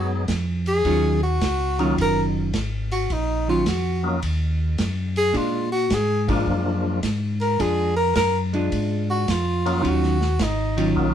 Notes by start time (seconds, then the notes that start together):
Already playing: F#2 F#3 G#3 B3 D#4 F#4 G#4 A#4
0.28 F2, kick, snare, hi-hat pedal, ride
0.66 G#4, ride
0.85 D#2 D#3 F#3 C#4 F4, kick, ride
1.23 F#4
1.41 C#2, kick, snare, hi-hat pedal, ride
1.79 D#3 F#3 A#3 C#4 D#4 F4, ride
1.98 F#1 A#4, kick, ride
2.53 G#1, kick, snare, hi-hat pedal, ride
2.92 F#4, ride
3.10 A#1 D#4, kick, ride
3.48 D#3 F#3 C#4 F4
3.66 F2 F#4, kick, snare, hi-hat pedal, ride
4.03 F#3 A#3 C#4 D#4 F4
4.22 D#2, kick, ride
4.78 F#2, kick, snare, hi-hat pedal, ride
5.16 G#4, ride
5.33 A#2 G#3 D4 F4, kick, ride
5.72 F#4
5.90 G#2 G#4, kick, snare, hi-hat pedal, ride
6.28 F3 G#3 A#3 D4 F4, kick, ride
6.47 F#2, kick
7.03 G#2, kick, snare, hi-hat pedal, ride
7.41 A#4, ride
7.59 F2 G#3 D4 F4 G#4, kick, ride
7.96 A#4
8.15 F#2 A#4, kick, snare, hi-hat pedal, ride
8.53 G#3 D4 F4, ride
8.72 G#2, kick, ride
9.10 F#4
9.28 F2 F4, kick, snare, hi-hat pedal, ride
9.66 F#3 A#3 C#4 D#4 F4, ride
9.82 D#2 D#3 F#3 C#4 F4, kick, ride
9.88 F#4
10.03 snare
10.21 snare
10.39 G#1 D#4, kick, snare, hi-hat pedal, ride
10.77 D#3 F#3 C#4 F4, ride
10.95 A#1 F#3 A#3 C#4 D#4 F4, kick